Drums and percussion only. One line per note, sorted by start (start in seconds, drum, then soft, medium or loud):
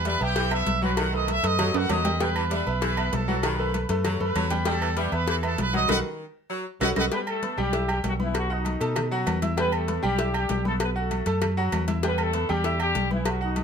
0.05 cowbell medium
0.05 high conga medium
0.21 high conga soft
0.21 low agogo medium
0.36 cowbell loud
0.36 high conga soft
0.36 low agogo medium
0.51 high conga soft
0.51 low agogo loud
0.51 claves medium
0.67 cowbell medium
0.67 high conga medium
0.67 low agogo medium
0.82 high conga medium
0.97 cowbell loud
0.97 low agogo loud
0.97 claves medium
1.13 high conga soft
1.28 cowbell medium
1.28 high conga medium
1.28 low agogo medium
1.44 cowbell medium
1.44 low agogo medium
1.59 cowbell loud
1.59 high conga soft
1.59 low conga medium
1.59 low agogo loud
1.59 claves medium
1.74 high conga soft
1.74 high timbale loud
1.89 cowbell medium
1.89 high conga medium
1.89 low timbale medium
1.89 low agogo loud
1.89 claves medium
2.05 cowbell medium
2.05 high conga medium
2.05 low timbale medium
2.05 low agogo medium
2.20 cowbell loud
2.20 low agogo medium
2.36 high conga soft
2.36 low agogo loud
2.36 claves medium
2.51 cowbell medium
2.51 high conga medium
2.67 high conga soft
2.67 low agogo medium
2.82 cowbell loud
2.82 high conga soft
2.82 low agogo medium
2.97 high conga soft
2.97 low agogo loud
2.97 claves medium
3.13 cowbell medium
3.13 high conga medium
3.13 low timbale medium
3.13 low agogo medium
3.29 high conga loud
3.43 cowbell loud
3.43 high conga soft
3.43 low agogo loud
3.43 claves medium
3.59 high conga soft
3.74 cowbell medium
3.74 high conga medium
3.74 low agogo medium
3.89 cowbell medium
3.89 low agogo medium
4.04 cowbell loud
4.04 high conga soft
4.04 low conga medium
4.04 low agogo loud
4.04 claves medium
4.21 high conga soft
4.21 low conga medium
4.36 cowbell medium
4.36 high conga medium
4.36 low agogo loud
4.36 claves medium
4.50 cowbell medium
4.50 high conga medium
4.50 low agogo medium
4.65 cowbell loud
4.65 high conga soft
4.65 low agogo medium
4.82 high conga soft
4.82 low agogo loud
4.82 claves medium
4.97 cowbell medium
4.97 high conga medium
5.12 high conga soft
5.12 low agogo loud
5.28 cowbell loud
5.28 high conga soft
5.28 low agogo medium
5.43 high conga soft
5.43 low agogo loud
5.43 claves medium
5.58 cowbell medium
5.58 high conga medium
5.58 low timbale medium
5.58 low agogo medium
5.74 high conga medium
5.89 cowbell loud
5.89 high conga loud
5.89 high timbale medium
5.89 claves loud
6.81 cowbell loud
6.81 high conga loud
6.81 high timbale loud
6.81 claves medium
6.96 cowbell loud
6.96 high conga loud
6.96 high timbale loud
6.96 claves loud
7.12 cowbell loud
7.12 low agogo medium
7.27 high conga soft
7.27 low agogo loud
7.27 claves medium
7.42 cowbell medium
7.42 high conga medium
7.58 low agogo medium
7.73 cowbell loud
7.73 high conga soft
7.73 low agogo medium
7.89 high conga soft
7.89 low agogo loud
7.89 claves medium
8.04 cowbell medium
8.04 high conga medium
8.04 low timbale medium
8.04 low agogo medium
8.20 high conga medium
8.34 cowbell loud
8.34 low agogo loud
8.34 claves medium
8.50 high conga soft
8.65 cowbell medium
8.65 high conga medium
8.65 low agogo medium
8.81 cowbell medium
8.81 high conga soft
8.81 low agogo medium
8.96 cowbell loud
8.96 high conga soft
8.96 low conga medium
8.96 low agogo loud
8.96 claves medium
9.12 high conga soft
9.27 cowbell medium
9.27 high conga medium
9.27 low timbale medium
9.27 low agogo loud
9.27 claves medium
9.42 cowbell medium
9.42 high conga medium
9.42 low agogo medium
9.57 cowbell loud
9.57 low agogo medium
9.72 high conga soft
9.72 low agogo loud
9.72 claves medium
9.88 cowbell medium
9.88 high conga medium
10.03 high conga soft
10.03 low agogo medium
10.19 cowbell loud
10.19 high conga soft
10.19 low agogo medium
10.34 high conga soft
10.34 low agogo loud
10.34 claves medium
10.49 cowbell medium
10.49 high conga medium
10.49 low timbale medium
10.49 low agogo medium
10.65 high conga medium
10.80 cowbell loud
10.80 low agogo loud
10.80 claves medium
10.96 high conga soft
11.11 cowbell medium
11.11 high conga medium
11.11 low agogo medium
11.26 cowbell medium
11.26 high conga soft
11.26 low agogo medium
11.42 cowbell loud
11.42 high conga soft
11.42 low conga medium
11.42 low agogo loud
11.42 claves medium
11.58 high conga soft
11.72 cowbell medium
11.72 high conga medium
11.72 low timbale medium
11.72 low agogo loud
11.72 claves medium
11.88 cowbell medium
11.88 high conga medium
11.88 low agogo medium
12.03 cowbell loud
12.03 low agogo medium
12.18 high conga soft
12.18 low agogo loud
12.18 claves medium
12.33 cowbell medium
12.33 high conga medium
12.49 low agogo medium
12.64 cowbell loud
12.64 high conga soft
12.64 low agogo medium
12.80 high conga soft
12.80 low agogo loud
12.80 claves medium
12.95 cowbell medium
12.95 high conga medium
12.95 low agogo medium
13.11 high conga medium
13.25 cowbell loud
13.25 high conga soft
13.25 low agogo loud
13.25 claves medium
13.41 high conga soft
13.56 cowbell medium
13.56 high conga medium
13.56 low agogo medium